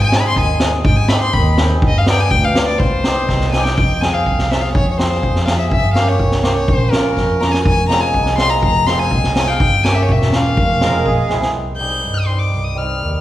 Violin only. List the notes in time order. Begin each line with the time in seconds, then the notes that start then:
0.04 G#5
0.16 B5
0.29 C6
0.41 G#5
0.85 G5
0.96 G#5
1.08 B5
1.21 C6
1.33 B5
1.87 D#5
1.98 F5
2.10 G5
2.20 G#5
2.30 G5
2.45 F5
2.67 D5
2.78 C5
3.52 G#5
3.63 G5
3.76 G5
4.01 G#5
4.13 F5
4.51 E5
4.61 F5
4.74 C#5
4.91 C#5
4.98 C5
5.45 F5
5.58 E5
5.71 E5
5.94 F5
6.08 C#5
6.43 C5
6.56 C#5
6.68 C5
6.91 A#4
7.40 A#5
7.52 G#5
7.64 G#5
7.89 A#5
8.01 G#5
8.38 C6
8.50 A#5
8.63 A#5
8.87 C6
8.99 G#5
9.36 G#5
9.47 F5 G5
9.52 G5
9.59 G5
9.84 G#5
9.95 E5
10.02 C#5
10.11 E5
10.35 F5
11.77 G6
12.14 D#6
12.26 C6
12.39 D6
12.64 D#6
12.77 F6